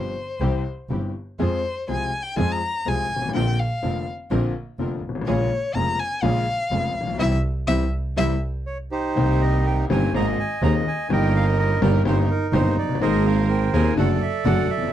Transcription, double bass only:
0, 0, Header, 1, 2, 480
1, 0, Start_track
1, 0, Tempo, 490597
1, 1365, Time_signature, 4, 2, 24, 8
1, 3277, Tempo, 481155
1, 7597, Tempo, 491400
1, 10477, Tempo, 478851
1, 14786, End_track
2, 0, Start_track
2, 0, Title_t, "Double bass"
2, 0, Program_c, 0, 43
2, 0, Note_on_c, 0, 31, 51
2, 116, Note_off_c, 0, 31, 0
2, 393, Note_on_c, 0, 36, 75
2, 598, Note_off_c, 0, 36, 0
2, 875, Note_on_c, 0, 31, 54
2, 1082, Note_off_c, 0, 31, 0
2, 1365, Note_on_c, 0, 41, 74
2, 1567, Note_off_c, 0, 41, 0
2, 1844, Note_on_c, 0, 36, 50
2, 2045, Note_off_c, 0, 36, 0
2, 2319, Note_on_c, 0, 41, 85
2, 2521, Note_off_c, 0, 41, 0
2, 2798, Note_on_c, 0, 36, 55
2, 2999, Note_off_c, 0, 36, 0
2, 3035, Note_on_c, 0, 32, 45
2, 3269, Note_off_c, 0, 32, 0
2, 3275, Note_on_c, 0, 34, 88
2, 3478, Note_off_c, 0, 34, 0
2, 3758, Note_on_c, 0, 29, 55
2, 3961, Note_off_c, 0, 29, 0
2, 4239, Note_on_c, 0, 34, 83
2, 4440, Note_off_c, 0, 34, 0
2, 4716, Note_on_c, 0, 29, 56
2, 4917, Note_off_c, 0, 29, 0
2, 4956, Note_on_c, 0, 32, 43
2, 5192, Note_off_c, 0, 32, 0
2, 5198, Note_on_c, 0, 34, 89
2, 5396, Note_off_c, 0, 34, 0
2, 5671, Note_on_c, 0, 29, 60
2, 5873, Note_off_c, 0, 29, 0
2, 6149, Note_on_c, 0, 34, 86
2, 6350, Note_off_c, 0, 34, 0
2, 6633, Note_on_c, 0, 29, 63
2, 6836, Note_off_c, 0, 29, 0
2, 6876, Note_on_c, 0, 34, 61
2, 7116, Note_off_c, 0, 34, 0
2, 7121, Note_on_c, 0, 36, 97
2, 7297, Note_off_c, 0, 36, 0
2, 7600, Note_on_c, 0, 36, 85
2, 7775, Note_off_c, 0, 36, 0
2, 8078, Note_on_c, 0, 36, 91
2, 8257, Note_off_c, 0, 36, 0
2, 9048, Note_on_c, 0, 36, 94
2, 9727, Note_off_c, 0, 36, 0
2, 9763, Note_on_c, 0, 31, 94
2, 9963, Note_off_c, 0, 31, 0
2, 9995, Note_on_c, 0, 32, 99
2, 10198, Note_off_c, 0, 32, 0
2, 10467, Note_on_c, 0, 39, 97
2, 10673, Note_off_c, 0, 39, 0
2, 10955, Note_on_c, 0, 31, 108
2, 11636, Note_off_c, 0, 31, 0
2, 11670, Note_on_c, 0, 31, 97
2, 11871, Note_off_c, 0, 31, 0
2, 11912, Note_on_c, 0, 31, 98
2, 12111, Note_off_c, 0, 31, 0
2, 12385, Note_on_c, 0, 31, 102
2, 12588, Note_off_c, 0, 31, 0
2, 12628, Note_on_c, 0, 30, 67
2, 12852, Note_off_c, 0, 30, 0
2, 12858, Note_on_c, 0, 32, 110
2, 13549, Note_off_c, 0, 32, 0
2, 13589, Note_on_c, 0, 39, 98
2, 13792, Note_off_c, 0, 39, 0
2, 13831, Note_on_c, 0, 30, 112
2, 14034, Note_off_c, 0, 30, 0
2, 14314, Note_on_c, 0, 30, 100
2, 14516, Note_off_c, 0, 30, 0
2, 14557, Note_on_c, 0, 29, 67
2, 14786, Note_off_c, 0, 29, 0
2, 14786, End_track
0, 0, End_of_file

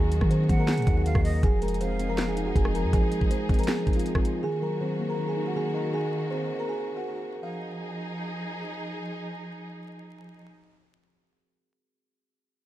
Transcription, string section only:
0, 0, Header, 1, 2, 480
1, 0, Start_track
1, 0, Tempo, 375000
1, 1833, Time_signature, 4, 2, 24, 8
1, 16197, End_track
2, 0, Start_track
2, 0, Title_t, "String section"
2, 0, Program_c, 0, 48
2, 0, Note_on_c, 0, 51, 86
2, 0, Note_on_c, 0, 58, 77
2, 0, Note_on_c, 0, 66, 91
2, 1794, Note_off_c, 0, 51, 0
2, 1794, Note_off_c, 0, 58, 0
2, 1794, Note_off_c, 0, 66, 0
2, 1832, Note_on_c, 0, 53, 83
2, 1832, Note_on_c, 0, 63, 77
2, 1832, Note_on_c, 0, 68, 95
2, 5634, Note_off_c, 0, 53, 0
2, 5634, Note_off_c, 0, 63, 0
2, 5634, Note_off_c, 0, 68, 0
2, 5673, Note_on_c, 0, 51, 84
2, 5673, Note_on_c, 0, 66, 93
2, 5674, Note_on_c, 0, 58, 77
2, 9474, Note_off_c, 0, 66, 0
2, 9475, Note_off_c, 0, 51, 0
2, 9475, Note_off_c, 0, 58, 0
2, 9512, Note_on_c, 0, 53, 82
2, 9512, Note_on_c, 0, 63, 79
2, 9512, Note_on_c, 0, 68, 93
2, 13402, Note_off_c, 0, 53, 0
2, 13403, Note_off_c, 0, 63, 0
2, 13403, Note_off_c, 0, 68, 0
2, 16197, End_track
0, 0, End_of_file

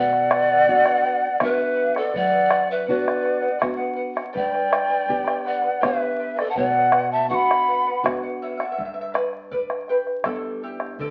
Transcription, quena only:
0, 0, Header, 1, 2, 480
1, 0, Start_track
1, 0, Tempo, 736196
1, 1406, Time_signature, 3, 2, 24, 8
1, 7240, End_track
2, 0, Start_track
2, 0, Title_t, "Quena"
2, 0, Program_c, 0, 77
2, 0, Note_on_c, 0, 78, 112
2, 906, Note_off_c, 0, 78, 0
2, 915, Note_on_c, 0, 76, 89
2, 1285, Note_on_c, 0, 74, 81
2, 1295, Note_off_c, 0, 76, 0
2, 1416, Note_on_c, 0, 78, 100
2, 1426, Note_off_c, 0, 74, 0
2, 1761, Note_off_c, 0, 78, 0
2, 1765, Note_on_c, 0, 76, 75
2, 1877, Note_off_c, 0, 76, 0
2, 1884, Note_on_c, 0, 74, 72
2, 2338, Note_off_c, 0, 74, 0
2, 2849, Note_on_c, 0, 79, 104
2, 3565, Note_on_c, 0, 78, 89
2, 3575, Note_off_c, 0, 79, 0
2, 3806, Note_on_c, 0, 76, 88
2, 3816, Note_off_c, 0, 78, 0
2, 4163, Note_on_c, 0, 74, 85
2, 4172, Note_off_c, 0, 76, 0
2, 4236, Note_on_c, 0, 81, 75
2, 4245, Note_off_c, 0, 74, 0
2, 4284, Note_on_c, 0, 78, 103
2, 4293, Note_off_c, 0, 81, 0
2, 4639, Note_off_c, 0, 78, 0
2, 4643, Note_on_c, 0, 81, 89
2, 4755, Note_off_c, 0, 81, 0
2, 4760, Note_on_c, 0, 85, 93
2, 4790, Note_on_c, 0, 83, 101
2, 4797, Note_off_c, 0, 85, 0
2, 5216, Note_off_c, 0, 83, 0
2, 7240, End_track
0, 0, End_of_file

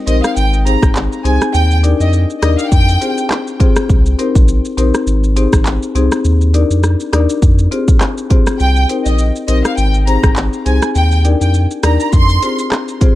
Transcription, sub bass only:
0, 0, Header, 1, 2, 480
1, 0, Start_track
1, 0, Key_signature, -3, "major"
1, 0, Tempo, 588235
1, 1259, Time_signature, 4, 2, 24, 8
1, 10731, End_track
2, 0, Start_track
2, 0, Title_t, "Sub bass"
2, 0, Program_c, 0, 38
2, 57, Note_on_c, 0, 34, 103
2, 176, Note_off_c, 0, 34, 0
2, 299, Note_on_c, 0, 32, 104
2, 627, Note_off_c, 0, 32, 0
2, 672, Note_on_c, 0, 32, 89
2, 883, Note_off_c, 0, 32, 0
2, 1017, Note_on_c, 0, 36, 93
2, 1135, Note_off_c, 0, 36, 0
2, 1259, Note_on_c, 0, 39, 108
2, 1587, Note_off_c, 0, 39, 0
2, 1632, Note_on_c, 0, 41, 93
2, 1843, Note_off_c, 0, 41, 0
2, 1978, Note_on_c, 0, 39, 94
2, 2096, Note_off_c, 0, 39, 0
2, 2219, Note_on_c, 0, 41, 104
2, 2429, Note_off_c, 0, 41, 0
2, 3179, Note_on_c, 0, 36, 107
2, 3389, Note_off_c, 0, 36, 0
2, 3552, Note_on_c, 0, 34, 90
2, 3763, Note_off_c, 0, 34, 0
2, 3896, Note_on_c, 0, 34, 98
2, 4015, Note_off_c, 0, 34, 0
2, 4135, Note_on_c, 0, 32, 107
2, 4465, Note_off_c, 0, 32, 0
2, 4511, Note_on_c, 0, 32, 94
2, 4722, Note_off_c, 0, 32, 0
2, 4855, Note_on_c, 0, 36, 93
2, 4975, Note_off_c, 0, 36, 0
2, 5096, Note_on_c, 0, 39, 114
2, 5425, Note_off_c, 0, 39, 0
2, 5470, Note_on_c, 0, 41, 90
2, 5682, Note_off_c, 0, 41, 0
2, 5817, Note_on_c, 0, 39, 93
2, 5935, Note_off_c, 0, 39, 0
2, 6057, Note_on_c, 0, 41, 108
2, 6268, Note_off_c, 0, 41, 0
2, 7019, Note_on_c, 0, 36, 108
2, 7229, Note_off_c, 0, 36, 0
2, 7391, Note_on_c, 0, 34, 90
2, 7602, Note_off_c, 0, 34, 0
2, 7737, Note_on_c, 0, 34, 103
2, 7856, Note_off_c, 0, 34, 0
2, 7978, Note_on_c, 0, 32, 109
2, 8306, Note_off_c, 0, 32, 0
2, 8350, Note_on_c, 0, 32, 93
2, 8562, Note_off_c, 0, 32, 0
2, 8698, Note_on_c, 0, 36, 93
2, 8816, Note_off_c, 0, 36, 0
2, 8939, Note_on_c, 0, 39, 110
2, 9267, Note_off_c, 0, 39, 0
2, 9311, Note_on_c, 0, 41, 90
2, 9522, Note_off_c, 0, 41, 0
2, 9658, Note_on_c, 0, 39, 98
2, 9776, Note_off_c, 0, 39, 0
2, 9898, Note_on_c, 0, 41, 109
2, 10109, Note_off_c, 0, 41, 0
2, 10731, End_track
0, 0, End_of_file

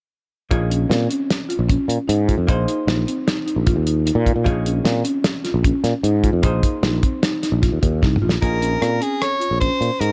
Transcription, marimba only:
0, 0, Header, 1, 2, 480
1, 0, Start_track
1, 0, Key_signature, -5, "minor"
1, 0, Tempo, 395778
1, 617, Time_signature, 5, 2, 24, 8
1, 12275, End_track
2, 0, Start_track
2, 0, Title_t, "Marimba"
2, 0, Program_c, 0, 12
2, 617, Note_on_c, 0, 65, 74
2, 766, Note_off_c, 0, 65, 0
2, 854, Note_on_c, 0, 61, 61
2, 1003, Note_off_c, 0, 61, 0
2, 1086, Note_on_c, 0, 60, 75
2, 1237, Note_off_c, 0, 60, 0
2, 1327, Note_on_c, 0, 61, 68
2, 1626, Note_off_c, 0, 61, 0
2, 1805, Note_on_c, 0, 65, 71
2, 1956, Note_off_c, 0, 65, 0
2, 2043, Note_on_c, 0, 61, 79
2, 2343, Note_off_c, 0, 61, 0
2, 2519, Note_on_c, 0, 63, 68
2, 2672, Note_off_c, 0, 63, 0
2, 2765, Note_on_c, 0, 65, 70
2, 3064, Note_off_c, 0, 65, 0
2, 3246, Note_on_c, 0, 63, 69
2, 3396, Note_off_c, 0, 63, 0
2, 3489, Note_on_c, 0, 63, 77
2, 3638, Note_off_c, 0, 63, 0
2, 3727, Note_on_c, 0, 60, 73
2, 3877, Note_off_c, 0, 60, 0
2, 3965, Note_on_c, 0, 63, 69
2, 4115, Note_off_c, 0, 63, 0
2, 4201, Note_on_c, 0, 63, 71
2, 4352, Note_off_c, 0, 63, 0
2, 4443, Note_on_c, 0, 65, 85
2, 4594, Note_off_c, 0, 65, 0
2, 4687, Note_on_c, 0, 63, 64
2, 4836, Note_off_c, 0, 63, 0
2, 4921, Note_on_c, 0, 63, 64
2, 5072, Note_off_c, 0, 63, 0
2, 5158, Note_on_c, 0, 65, 72
2, 5310, Note_off_c, 0, 65, 0
2, 5399, Note_on_c, 0, 65, 87
2, 5551, Note_off_c, 0, 65, 0
2, 5643, Note_on_c, 0, 61, 64
2, 5794, Note_off_c, 0, 61, 0
2, 5883, Note_on_c, 0, 60, 73
2, 6033, Note_off_c, 0, 60, 0
2, 6118, Note_on_c, 0, 61, 75
2, 6418, Note_off_c, 0, 61, 0
2, 6598, Note_on_c, 0, 65, 71
2, 6750, Note_off_c, 0, 65, 0
2, 6832, Note_on_c, 0, 61, 80
2, 7134, Note_off_c, 0, 61, 0
2, 7319, Note_on_c, 0, 63, 70
2, 7470, Note_off_c, 0, 63, 0
2, 7559, Note_on_c, 0, 65, 65
2, 7859, Note_off_c, 0, 65, 0
2, 8042, Note_on_c, 0, 63, 67
2, 8193, Note_off_c, 0, 63, 0
2, 8285, Note_on_c, 0, 63, 78
2, 8434, Note_off_c, 0, 63, 0
2, 8526, Note_on_c, 0, 60, 63
2, 8676, Note_off_c, 0, 60, 0
2, 8762, Note_on_c, 0, 63, 73
2, 8913, Note_off_c, 0, 63, 0
2, 9007, Note_on_c, 0, 63, 70
2, 9156, Note_off_c, 0, 63, 0
2, 9239, Note_on_c, 0, 65, 80
2, 9391, Note_off_c, 0, 65, 0
2, 9477, Note_on_c, 0, 63, 63
2, 9630, Note_off_c, 0, 63, 0
2, 9724, Note_on_c, 0, 63, 67
2, 9875, Note_off_c, 0, 63, 0
2, 9968, Note_on_c, 0, 65, 76
2, 10118, Note_off_c, 0, 65, 0
2, 10204, Note_on_c, 0, 65, 68
2, 10355, Note_off_c, 0, 65, 0
2, 10442, Note_on_c, 0, 61, 58
2, 10594, Note_off_c, 0, 61, 0
2, 10676, Note_on_c, 0, 60, 73
2, 10830, Note_off_c, 0, 60, 0
2, 10920, Note_on_c, 0, 61, 62
2, 11223, Note_off_c, 0, 61, 0
2, 11399, Note_on_c, 0, 65, 62
2, 11553, Note_off_c, 0, 65, 0
2, 11654, Note_on_c, 0, 61, 73
2, 11953, Note_off_c, 0, 61, 0
2, 12131, Note_on_c, 0, 63, 60
2, 12275, Note_off_c, 0, 63, 0
2, 12275, End_track
0, 0, End_of_file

